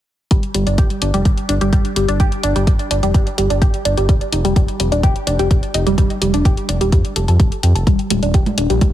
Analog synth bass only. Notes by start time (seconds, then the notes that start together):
0.31 G1
0.54 G1
0.67 G1
0.78 G1
1.02 G1
1.14 F1
1.25 G1
1.49 G1
1.61 G1
1.73 G1
1.96 G1
2.08 G1
2.20 G1
2.44 G1
2.56 G1
2.67 G1
2.91 G1
3.03 F1
3.14 G1
3.38 G1
3.50 G1
3.62 G1
3.85 G1
3.98 G1
4.09 F1
4.32 F1
4.45 F1
4.56 F1
4.80 F1
4.92 D#1
5.03 F1
5.27 F1
5.39 F1
5.51 F1
5.74 F1
5.87 F1
5.98 F1
6.22 F1
6.34 F1
6.45 F1
6.69 F1
6.81 D#1
6.92 F2
7.16 F1
7.28 F2
7.40 F1
7.63 F2
7.75 F1
7.87 D#1
8.10 D#1
8.23 D#1
8.34 D#1
8.58 D#1
8.70 A#1
8.81 D#1